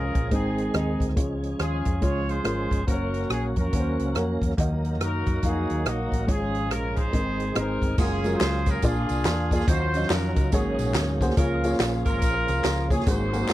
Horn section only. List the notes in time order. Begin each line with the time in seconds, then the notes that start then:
Already playing: C#4 F4 G#4 A#4
0.32 C4 D#4 G#4
0.74 C4 D#4 G#4
1.60 C#4 F4 G#4
2.02 F4 G#4 C#5
2.28 F4 G#4 C5
2.86 C#4 F#4 A#4
3.30 G#4
3.57 C#4 F#4 A#4
5.01 D#4 F#4 A#4
5.45 D#4 G#4
5.87 A#3 D#4 F#4
6.29 C#4 F4 G#4
6.70 A#4
6.96 D#4 G#4 C5
7.56 D#4 A#4
7.99 C#4 F4 G#4
8.34 F4 G#4 C5
8.68 A#4
8.84 D4 F4 G#4
9.53 G#4
9.68 F4 F#4 C5
10.10 C#4 F#4 A#4
10.52 C#4 D#4 G#4
11.37 F4 A#4
12.06 F4 A#4
12.91 G#4
13.07 D#4 F#4 C5